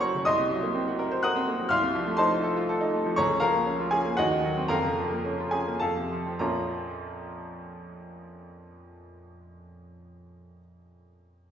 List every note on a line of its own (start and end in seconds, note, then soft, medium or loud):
0.00 0.21 F#1 medium
0.00 0.22 F#2 medium
0.00 0.15 C#3 medium
0.00 0.02 F#3 medium
0.00 0.21 F#3 medium
0.00 0.28 A#3 medium
0.00 0.29 C#4 medium
0.00 0.28 F#4 medium
0.00 0.28 A#4 medium
0.00 0.29 C5 medium
0.00 0.02 C#5 medium
0.00 0.24 C#5 medium
0.00 0.28 F#5 medium
0.00 0.29 A#5 loud
0.00 0.26 C6 loud
0.00 0.28 C#6 loud
0.15 0.26 C#3 medium
0.25 1.67 C2 medium
0.25 1.19 D#5 loud
0.25 1.19 C6 loud
0.25 1.22 D#6 loud
0.38 0.57 C3 medium
0.51 0.70 F#3 medium
0.63 0.82 A#3 medium
0.75 0.94 C4 medium
0.88 1.06 F#4 medium
0.99 1.18 A#4 medium
1.11 1.30 C5 medium
1.23 1.43 A#4 medium
1.23 1.68 F#5 loud
1.23 1.68 D#6 loud
1.23 1.71 F#6 loud
1.36 1.55 C4 medium
1.47 1.66 A#3 medium
1.59 1.71 F#3 medium
1.69 3.13 C2 loud
1.69 2.16 F5 loud
1.69 2.15 C6 loud
1.69 2.18 F6 loud
1.83 2.02 C3 medium
1.95 2.14 F3 medium
2.07 2.26 A3 medium
2.17 2.38 D#4 medium
2.17 2.88 C5 medium
2.17 2.88 A5 medium
2.17 2.91 C6 loud
2.32 2.51 F4 medium
2.44 2.63 A4 medium
2.56 2.75 F4 medium
2.69 2.88 A4 medium
2.81 3.00 D#4 medium
2.94 3.13 A3 medium
3.06 3.17 F3 medium
3.16 4.16 C#2 medium
3.16 3.40 C#5 loud
3.16 3.38 A#5 loud
3.16 3.41 C#6 loud
3.30 3.49 C#3 medium
3.40 3.61 F3 medium
3.40 3.89 A#4 medium
3.40 3.88 F5 loud
3.40 3.92 A#5 loud
3.54 3.74 A#3 medium
3.66 3.87 C#4 medium
3.80 4.01 F4 medium
3.91 4.13 C#4 medium
3.91 4.16 G#4 medium
3.91 4.18 G#5 loud
4.06 4.19 A#3 medium
4.17 4.69 D#2 loud
4.17 4.67 F#4 medium
4.17 4.67 D#5 medium
4.17 4.70 F#5 loud
4.31 4.52 D#3 medium
4.45 4.66 F#3 medium
4.57 4.71 C4 medium
4.68 5.77 F1 medium
4.68 5.78 F2 medium
4.68 5.48 A#4 medium
4.68 5.48 F5 loud
4.68 5.52 A#5 loud
4.85 5.06 C#3 medium
4.98 5.20 F3 medium
5.11 5.33 A#3 medium
5.25 5.47 C#4 medium
5.40 5.62 F4 medium
5.51 5.75 C#4 medium
5.51 5.79 G#4 medium
5.51 5.81 G#5 loud
5.67 5.81 A#3 medium
5.80 6.39 F2 medium
5.80 6.37 A4 medium
5.80 6.37 F5 medium
5.80 6.40 A5 loud
5.96 6.20 C3 medium
6.11 6.35 F3 medium
6.26 6.41 C4 medium
6.39 10.57 A#1 medium
6.39 10.58 F2 medium
6.39 10.58 F3 medium
6.39 10.59 A#3 medium
6.39 10.59 C#4 medium
6.39 10.59 F4 medium
6.39 10.57 A#5 medium